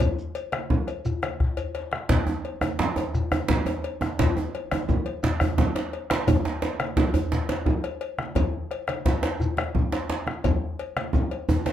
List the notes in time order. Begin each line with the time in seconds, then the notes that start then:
0.00 bombo low, cowbell, djembe slap, high conga, djembe tone, low conga, djembe bass, shekere
0.19 shekere
0.35 cowbell, djembe slap, high conga, shekere
0.52 bombo rim, cowbell, djembe slap, high conga
0.70 bombo low, djembe tone, low conga
0.87 bombo rim, cowbell, shekere
1.05 bombo rim, djembe bass, shekere
1.23 bombo rim, cowbell, djembe slap, high conga
1.40 bombo rim, bombo low, djembe tone
1.57 cowbell, djembe bass, shekere
1.75 cowbell, djembe slap, high conga
1.92 bombo rim, djembe slap, high conga
2.09 bombo rim, bombo low, cowbell, djembe slap, djembe tone, djembe bass, low conga, shekere
2.27 djembe tone
2.45 cowbell
2.61 bombo rim, cowbell, djembe slap, djembe tone, high conga
2.79 djembe slap, djembe tone, high conga, low conga, shekere
2.96 cowbell, djembe tone
3.14 bombo rim, djembe slap, djembe bass, shekere
3.32 bombo rim, cowbell, djembe slap, djembe tone, high conga, shekere
3.48 bombo rim, bombo low, djembe slap, djembe tone, high conga, low conga
3.66 bombo rim, cowbell, djembe tone
3.84 cowbell
4.01 bombo rim, djembe slap, djembe tone, high conga
4.19 bombo low, cowbell, djembe slap, djembe tone, low conga, djembe bass, shekere
4.37 djembe tone
4.55 cowbell
4.71 bombo rim, cowbell, djembe slap, high conga, djembe tone
4.89 bombo low, high conga, djembe tone, low conga, shekere
5.06 cowbell
5.23 bombo rim, djembe slap, djembe bass, shekere
5.40 bombo rim, cowbell, djembe slap, high conga, djembe bass, shekere
5.58 bombo rim, bombo low, djembe slap, djembe tone, high conga, low conga
5.75 bombo rim, cowbell, djembe slap
5.93 cowbell
6.10 bombo rim, djembe slap, high conga
6.27 bombo rim, bombo low, cowbell, djembe slap, djembe tone, low conga, djembe bass, shekere
6.45 djembe slap
6.62 cowbell, djembe slap
6.80 bombo rim, cowbell, djembe slap, high conga
6.97 bombo low, djembe slap, djembe tone, high conga, low conga, shekere
7.14 cowbell, djembe bass
7.32 bombo rim, djembe slap, djembe bass, shekere
7.49 cowbell, djembe slap, high conga, shekere
7.66 bombo rim, bombo low, djembe slap, high conga, djembe tone, low conga
7.84 bombo rim, cowbell
8.01 cowbell
8.18 bombo rim, djembe slap, high conga
8.35 bombo low, cowbell, djembe tone, djembe bass, low conga, shekere
8.53 high conga
8.71 bombo rim, cowbell, djembe slap, high conga
8.87 bombo rim, cowbell, djembe slap, high conga
9.05 bombo low, djembe slap, djembe tone, low conga
9.23 cowbell, djembe slap, high conga
9.40 bombo rim, high conga, djembe bass, shekere
9.57 bombo rim, cowbell, djembe slap, high conga
9.75 bombo low, djembe slap, djembe tone, low conga
9.92 bombo rim, cowbell, djembe slap, high conga
10.10 cowbell, djembe slap, high conga
10.27 bombo rim, djembe slap, high conga
10.44 bombo rim, bombo low, cowbell, djembe slap, djembe tone, djembe bass, low conga, shekere
10.79 cowbell
10.96 bombo rim, cowbell, djembe slap, high conga
11.13 bombo low, high conga, djembe tone, low conga, shekere
11.31 cowbell
11.49 bombo rim, djembe slap, djembe tone, djembe bass, shekere
11.66 cowbell, djembe slap, high conga, shekere